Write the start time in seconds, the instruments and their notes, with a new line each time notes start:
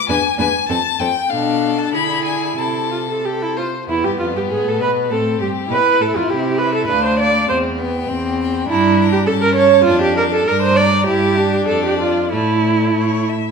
0.09 cello E2, viola D4, violin B4 G#5
0.38 cello E2, viola D4, violin B4 G#5
0.69 cello F2, viola C4, violin A4 A5
0.99 cello F2, viola C4, violin A4 G5
1.30 cello B2, viola D4, violin A4 F5
1.78 violin A5
1.93 cello D3, viola E4, violin G#4 B5
2.25 violin G#5
2.58 cello C3, viola E4, violin A4 A5
2.91 viola F4
3.10 viola A4
3.24 viola G4, violin A4
3.42 viola E4
3.57 viola F4, violin C5
3.88 cello E2, violin B3 E4, viola E4
4.04 cello G2, viola G4, violin G4
4.18 cello F2, viola F4, violin F4
4.34 cello G2, violin G4, viola G4
4.49 cello G#2, violin G#4, viola G#4
4.64 cello A2, violin A4, viola A4
4.79 cello B2, violin B4, viola B4
5.10 cello A2, violin C4 A4, viola A4
5.39 cello G2, violin G4, viola G4
5.69 cello B2, violin E4 B4, viola B4
6.00 cello A2, viola A4, violin A4
6.15 cello F2, viola F4, violin F4
6.29 cello C3, viola G4
6.58 viola B4, violin E5
6.74 viola A4
6.87 cello D2, violin D4 F5, viola B4
7.04 viola C5
7.19 viola D5, violin F5
7.48 cello E2, violin C4, viola C5
7.78 violin B3 G5
8.08 cello E2, violin C4
8.40 violin G5
8.67 cello G2, violin D4, viola E4
8.71 violin A#5
9.00 violin A#5
9.12 viola G4
9.26 cello G2, violin C#4 A5, viola A4
9.42 viola A#4
9.55 viola C#5, violin A5
9.84 cello F2, violin D4 A5, viola F4
10.01 viola G4
10.17 viola A#4, violin A5
10.33 viola A4
10.46 cello G2, violin D4 A#5, viola A#4
10.62 viola C5
10.77 viola D5, violin A#5
11.06 cello G2, violin E4 A5, viola G4
11.37 violin D4
11.68 cello F2, viola A4, violin D5
11.85 viola G4
12.01 viola F4
12.32 cello A2, violin A3 D5, viola E4
12.95 cello A2, violin C#5
13.29 violin E5